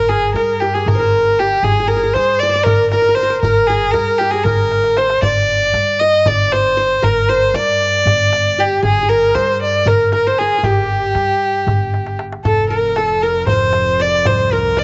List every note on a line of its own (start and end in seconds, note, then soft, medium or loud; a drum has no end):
0.00 0.32 G1 medium
0.00 0.10 A#4 medium
0.00 0.35 A#4 medium
0.00 0.64 C5 medium
0.09 0.35 G#4 medium
0.09 0.68 G#4 medium
0.09 darbuka ka soft
0.34 0.83 G2 medium
0.34 0.62 A#4 medium
0.34 0.88 A#4 medium
0.34 darbuka tek medium
0.60 0.76 G4 medium
0.60 0.81 G4 medium
0.74 0.89 G#4 medium
0.74 1.46 G#4 medium
0.86 1.59 G1 medium
0.86 1.41 A#4 medium
0.86 0.99 A#4 medium
0.86 darbuka dum medium
0.95 2.00 C5 medium
0.99 2.13 A#4 medium
1.39 1.65 G4 medium
1.39 1.70 G4 medium
1.63 2.11 G1 medium
1.63 1.89 G#4 medium
1.63 1.71 G#4 medium
1.63 darbuka dum medium
1.72 1.79 G#4 medium
1.80 1.87 G#4 medium
1.87 1.96 G#4 medium
1.87 2.15 A#4 medium
1.87 darbuka ka soft
1.96 2.03 G#4 medium
2.03 3.25 G#4 medium
2.14 2.63 G2 medium
2.14 2.41 C5 medium
2.14 2.49 C5 medium
2.14 darbuka tek medium
2.39 2.65 D5 medium
2.39 2.55 D5 medium
2.39 darbuka ka soft
2.49 3.55 C5 medium
2.54 3.54 D5 medium
2.54 darbuka ka soft
2.64 3.39 G1 medium
2.64 2.90 A#4 medium
2.64 2.93 A#4 medium
2.64 darbuka dum medium
2.90 3.17 A#4 medium
2.90 3.01 A#4 medium
2.90 darbuka tek medium
3.02 3.08 A#4 medium
3.09 3.16 A#4 medium
3.15 3.22 A#4 soft
3.15 3.41 C5 medium
3.23 3.29 A#4 medium
3.30 3.44 A#4 medium
3.42 3.91 G1 medium
3.42 3.68 A#4 medium
3.42 3.93 A#4 medium
3.42 darbuka dum medium
3.67 3.93 G#4 medium
3.67 4.27 G#4 medium
3.67 darbuka ka soft
3.91 4.42 G2 medium
3.91 4.20 A#4 medium
3.91 4.30 A#4 medium
3.91 darbuka tek medium
4.18 4.33 G4 medium
4.18 4.39 G4 medium
4.18 darbuka ka soft
4.31 4.45 G#4 medium
4.31 5.55 G#4 medium
4.31 4.45 A#4 soft
4.44 5.18 G1 medium
4.44 4.99 A#4 medium
4.44 5.59 A#4 medium
4.44 darbuka dum medium
4.59 darbuka ka soft
4.72 darbuka tek medium
4.84 darbuka ka medium
4.97 5.23 C5 medium
4.97 6.04 C5 medium
4.97 darbuka tek medium
5.10 darbuka ka medium
5.22 5.71 G1 medium
5.22 6.07 D5 medium
5.22 6.01 D5 loud
5.22 darbuka dum medium
5.49 darbuka ka soft
5.73 6.22 G2 medium
5.73 darbuka tek medium
5.99 6.29 D#5 medium
5.99 6.32 D#5 medium
5.99 darbuka ka soft
6.13 darbuka ka soft
6.26 6.99 G1 medium
6.26 7.25 D5 medium
6.26 6.54 D5 medium
6.26 darbuka dum medium
6.52 7.05 C5 medium
6.52 6.77 C5 medium
6.52 darbuka tek medium
6.77 7.29 C5 medium
7.02 7.51 G1 medium
7.02 8.16 A#4 medium
7.02 7.31 A#4 medium
7.02 darbuka dum medium
7.29 7.56 C5 medium
7.29 8.35 C5 medium
7.54 8.02 G2 medium
7.54 8.61 D5 loud
7.54 8.61 D5 medium
7.54 darbuka tek medium
7.81 darbuka ka soft
7.94 darbuka ka soft
8.06 8.79 G1 medium
8.06 darbuka dum medium
8.33 darbuka tek medium
8.58 8.88 G4 medium
8.58 8.84 G4 medium
8.82 9.31 G1 medium
8.82 9.02 G#4 medium
8.82 9.11 G#4 medium
8.82 darbuka dum medium
9.03 10.24 G#4 medium
9.09 9.86 A#4 medium
9.09 9.37 A#4 medium
9.09 darbuka ka soft
9.35 9.83 G2 medium
9.35 10.27 C5 medium
9.35 9.61 C5 medium
9.35 darbuka tek medium
9.60 9.89 D5 medium
9.60 darbuka ka soft
9.73 darbuka ka soft
9.86 10.59 G1 medium
9.86 10.12 A#4 medium
9.86 10.13 A#4 medium
9.86 darbuka dum medium
10.12 11.26 A#4 medium
10.12 10.29 A#4 medium
10.12 darbuka tek medium
10.27 11.33 C5 medium
10.27 10.40 C5 medium
10.38 10.66 G#4 medium
10.38 10.58 G#4 medium
10.58 10.71 G#4 soft
10.63 11.12 G1 medium
10.63 12.19 G4 medium
10.63 12.15 G4 medium
10.63 darbuka dum medium
10.90 darbuka ka soft
11.15 11.63 G2 medium
11.15 darbuka tek medium
11.54 darbuka ka soft
11.67 12.40 G1 medium
11.67 darbuka dum medium
11.81 darbuka ka soft
11.94 darbuka tek medium
12.07 darbuka ka medium
12.19 darbuka tek medium
12.32 darbuka ka medium
12.44 13.44 F1 medium
12.44 14.84 F2 medium
12.44 12.69 A4 medium
12.44 12.76 A4 medium
12.44 darbuka dum medium
12.69 12.98 A#4 medium
12.69 13.04 A#4 medium
12.96 13.23 A4 medium
12.96 13.29 A4 medium
12.96 darbuka tek medium
13.22 13.47 A#4 medium
13.22 14.36 A#4 medium
13.22 darbuka ka soft
13.47 14.22 F1 medium
13.47 14.03 C5 medium
13.47 14.26 C5 medium
13.47 darbuka dum medium
13.73 darbuka tek medium
14.00 14.77 D5 medium
14.00 14.28 D5 medium
14.25 14.84 C2 medium
14.25 14.84 C5 medium
14.25 14.54 C5 medium
14.25 darbuka dum medium
14.53 14.84 A#4 medium
14.53 14.80 A#4 medium
14.77 14.84 D5 medium
14.77 darbuka tek medium